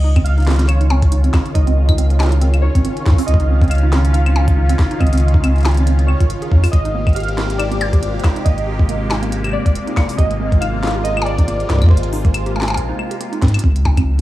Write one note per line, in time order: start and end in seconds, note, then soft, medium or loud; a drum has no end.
0.00 1.28 C#2 loud
0.00 6.69 C#3 medium
0.00 6.69 D#3 medium
0.00 6.69 C#4 medium
0.00 6.69 F4 medium
0.00 13.65 F4 medium
0.00 0.26 D#5 loud
0.00 13.65 F5 medium
0.04 0.13 D#4 medium
0.16 0.20 C4 loud
0.16 kick loud
0.16 closed hi-hat soft
0.16 claves medium
0.24 0.65 F5 loud
0.24 closed hi-hat medium
0.38 0.45 D#4 medium
0.38 closed hi-hat soft
0.40 closed hi-hat soft
0.42 closed hi-hat soft
0.45 0.56 C4 medium
0.45 snare loud
0.45 closed hi-hat soft
0.47 closed hi-hat soft
0.50 snare medium
0.50 closed hi-hat soft
0.53 snare medium
0.53 closed hi-hat soft
0.56 snare medium
0.56 closed hi-hat soft
0.59 0.66 C4 medium
0.59 snare medium
0.59 closed hi-hat medium
0.66 1.57 C#5 loud
0.66 snare soft
0.66 closed hi-hat medium
0.66 claves medium
0.81 0.88 D#4 medium
0.81 closed hi-hat soft
0.90 0.96 C4 loud
0.90 percussion blips medium
1.02 kick loud
1.02 closed hi-hat medium
1.12 1.21 D#4 medium
1.12 closed hi-hat medium
1.24 1.31 C4 medium
1.24 closed hi-hat soft
1.34 1.42 C4 medium
1.34 kick loud
1.34 snare loud
1.34 claves medium
1.46 closed hi-hat soft
1.54 2.68 C#2 loud
1.54 1.64 D#4 medium
1.54 2.15 D#5 medium
1.54 kick loud
1.54 closed hi-hat medium
1.67 1.71 C4 loud
1.67 closed hi-hat soft
1.89 1.96 D#4 medium
1.89 kick loud
1.89 closed hi-hat soft
1.89 claves medium
1.98 2.07 C4 medium
1.98 closed hi-hat medium
2.10 2.17 C4 medium
2.10 closed hi-hat soft
2.20 snare loud
2.20 percussion blips medium
2.23 snare loud
2.26 snare medium
2.29 2.39 D#4 medium
2.29 snare medium
2.29 closed hi-hat medium
2.41 2.47 C4 loud
2.41 closed hi-hat medium
2.54 closed hi-hat soft
2.54 claves medium
2.62 2.72 D#4 medium
2.62 3.29 C#5 loud
2.75 2.88 G#1 loud
2.75 2.82 C4 medium
2.75 kick loud
2.75 closed hi-hat medium
2.85 2.93 C4 medium
2.85 closed hi-hat medium
2.97 closed hi-hat soft
3.06 3.15 D#4 medium
3.06 kick loud
3.06 snare loud
3.10 kick loud
3.13 kick medium
3.18 3.23 C4 loud
3.18 open hi-hat medium
3.26 4.73 C#2 loud
3.26 3.72 D#5 loud
3.26 closed hi-hat medium
3.34 kick loud
3.40 3.47 D#4 medium
3.40 closed hi-hat soft
3.50 3.58 C4 medium
3.62 3.68 C4 medium
3.62 kick loud
3.62 closed hi-hat soft
3.64 closed hi-hat soft
3.68 4.10 F5 loud
3.68 closed hi-hat soft
3.71 closed hi-hat medium
3.71 claves medium
3.75 closed hi-hat soft
3.78 closed hi-hat soft
3.83 3.90 D#4 medium
3.93 3.98 C4 loud
3.93 snare loud
4.05 closed hi-hat medium
4.13 4.23 D#4 medium
4.13 5.02 F5 loud
4.13 closed hi-hat medium
4.26 4.33 C4 medium
4.26 closed hi-hat soft
4.26 claves medium
4.36 4.45 C4 medium
4.36 percussion blips medium
4.48 kick loud
4.48 closed hi-hat medium
4.58 4.66 D#4 medium
4.69 4.74 C4 loud
4.69 closed hi-hat medium
4.79 kick loud
4.79 snare loud
4.91 4.98 D#4 medium
4.91 closed hi-hat soft
4.99 6.13 C#2 loud
4.99 5.09 C4 medium
4.99 5.61 D#5 medium
4.99 kick loud
4.99 closed hi-hat soft
4.99 claves medium
5.07 closed hi-hat soft
5.13 5.20 C4 medium
5.13 closed hi-hat medium
5.15 closed hi-hat soft
5.18 closed hi-hat medium
5.20 closed hi-hat soft
5.28 closed hi-hat soft
5.34 5.41 D#4 medium
5.34 kick loud
5.44 5.49 C4 loud
5.44 closed hi-hat medium
5.44 claves medium
5.56 closed hi-hat soft
5.58 closed hi-hat soft
5.61 closed hi-hat soft
5.63 snare loud
5.63 closed hi-hat soft
5.65 5.74 D#4 medium
5.65 closed hi-hat soft
5.65 percussion blips medium
5.68 closed hi-hat soft
5.71 closed hi-hat soft
5.74 5.84 C4 medium
5.74 closed hi-hat soft
5.77 closed hi-hat medium
5.87 5.96 C4 medium
5.87 closed hi-hat medium
5.99 closed hi-hat soft
6.07 6.20 C4 medium
6.07 6.74 C#5 loud
6.07 claves medium
6.21 6.33 G#1 loud
6.21 6.30 F4 medium
6.21 kick loud
6.21 closed hi-hat medium
6.30 closed hi-hat medium
6.42 6.49 G#4 medium
6.42 closed hi-hat soft
6.52 6.66 F2 medium
6.52 6.63 D#4 medium
6.52 kick loud
6.64 6.71 F4 loud
6.64 open hi-hat medium
6.64 claves medium
6.71 8.19 G#1 loud
6.71 13.60 C3 medium
6.71 13.60 G#3 medium
6.71 13.60 A#3 medium
6.71 10.15 G4 medium
6.71 7.17 D#5 loud
6.71 kick loud
6.71 closed hi-hat medium
6.85 6.92 D#4 medium
6.85 closed hi-hat soft
6.95 7.00 A#3 loud
7.07 kick loud
7.07 closed hi-hat soft
7.07 claves medium
7.09 closed hi-hat soft
7.13 7.28 G4 medium
7.13 7.60 F5 loud
7.13 closed hi-hat soft
7.16 closed hi-hat medium
7.20 closed hi-hat soft
7.24 closed hi-hat soft
7.28 7.35 A#3 medium
7.28 closed hi-hat soft
7.38 7.47 A#3 medium
7.38 snare loud
7.50 closed hi-hat soft
7.58 7.68 D#4 medium
7.58 8.48 D5 loud
7.58 closed hi-hat medium
7.58 claves medium
7.71 7.76 A#3 loud
7.71 closed hi-hat soft
7.81 percussion blips medium
7.93 8.02 G4 medium
7.93 kick loud
7.93 closed hi-hat medium
8.03 8.11 A#3 medium
8.03 closed hi-hat medium
8.15 8.22 A#3 medium
8.20 closed hi-hat soft
8.24 kick loud
8.24 snare loud
8.24 claves soft
8.36 8.43 D#4 medium
8.36 closed hi-hat soft
8.44 9.59 G#1 loud
8.44 8.51 A#3 loud
8.44 9.06 D#5 medium
8.44 kick loud
8.44 closed hi-hat medium
8.58 closed hi-hat soft
8.67 8.79 G4 medium
8.79 8.86 A#3 medium
8.79 kick loud
8.89 8.98 A#3 medium
8.89 closed hi-hat medium
9.11 9.19 D#4 medium
9.11 snare loud
9.11 percussion blips loud
9.23 9.27 A#3 loud
9.23 closed hi-hat medium
9.32 closed hi-hat medium
9.44 9.53 G4 medium
9.44 closed hi-hat soft
9.44 claves medium
9.47 claves soft
9.49 claves soft
9.52 9.62 A#3 medium
9.52 10.14 D5 loud
9.52 claves soft
9.66 9.78 D#1 loud
9.66 9.73 A#3 medium
9.66 kick loud
9.66 closed hi-hat medium
9.75 closed hi-hat medium
9.87 9.94 D#4 medium
9.87 closed hi-hat soft
9.97 10.02 A#3 loud
9.97 kick loud
9.97 snare loud
9.97 claves medium
10.09 open hi-hat medium
10.17 11.64 G#1 loud
10.17 13.60 F4 medium
10.17 10.30 G4 medium
10.17 10.58 D#5 loud
10.17 kick loud
10.17 closed hi-hat medium
10.30 10.37 A#3 medium
10.30 closed hi-hat soft
10.40 10.49 A#3 medium
10.52 kick loud
10.52 closed hi-hat soft
10.60 10.70 D#4 medium
10.60 11.06 F5 loud
10.60 closed hi-hat medium
10.60 claves medium
10.74 10.78 A#3 loud
10.83 snare loud
10.87 snare medium
10.91 snare medium
10.95 11.04 G4 medium
11.04 11.14 A#3 medium
11.04 11.24 D#5 loud
11.04 closed hi-hat medium
11.17 11.24 A#3 medium
11.17 claves medium
11.22 11.87 D5 loud
11.22 percussion blips loud
11.26 closed hi-hat soft
11.38 11.45 D#4 medium
11.38 kick loud
11.38 closed hi-hat medium
11.48 11.53 A#3 loud
11.48 closed hi-hat medium
11.60 closed hi-hat soft
11.70 11.81 G4 medium
11.70 kick medium
11.70 snare loud
11.73 kick medium
11.76 kick medium
11.79 11.89 A#3 medium
11.79 kick medium
11.82 kick medium
11.82 closed hi-hat soft
11.82 claves medium
11.84 kick medium
11.86 kick loud
11.89 13.16 C5 medium
11.89 kick loud
11.91 12.77 G#1 loud
11.91 12.00 A#3 medium
11.91 kick loud
11.97 closed hi-hat medium
12.03 closed hi-hat soft
12.13 12.22 D#4 medium
12.13 open hi-hat medium
12.25 12.29 A#3 loud
12.25 kick loud
12.25 closed hi-hat soft
12.34 closed hi-hat medium
12.34 claves medium
12.46 12.55 G4 medium
12.46 closed hi-hat soft
12.56 12.65 A#3 medium
12.56 percussion blips soft
12.60 snare loud
12.60 percussion blips medium
12.63 percussion blips medium
12.68 12.75 A#3 medium
12.68 closed hi-hat medium
12.68 percussion blips medium
12.70 percussion blips medium
12.74 12.92 A#1 medium
12.74 closed hi-hat medium
12.74 percussion blips medium
12.89 12.96 D#4 medium
12.99 13.08 A#3 medium
12.99 claves medium
13.11 13.15 G4 medium
13.11 closed hi-hat medium
13.21 13.32 A#3 medium
13.21 closed hi-hat medium
13.33 13.40 D#4 medium
13.33 closed hi-hat soft
13.42 13.57 G#2 medium
13.42 13.54 C4 medium
13.42 kick loud
13.42 snare loud
13.42 closed hi-hat medium
13.48 closed hi-hat medium
13.54 closed hi-hat medium
13.54 claves medium
13.59 closed hi-hat medium
13.64 14.21 C#2 loud
13.64 14.21 C#3 medium
13.64 14.21 F3 medium
13.64 13.73 C4 medium
13.64 14.21 C4 medium
13.64 14.21 D#4 medium
13.64 kick loud
13.76 closed hi-hat medium
13.85 13.94 D#4 medium
13.85 kick medium
13.85 percussion blips medium
13.97 14.02 C4 loud
13.97 kick loud
13.97 closed hi-hat medium
13.97 claves medium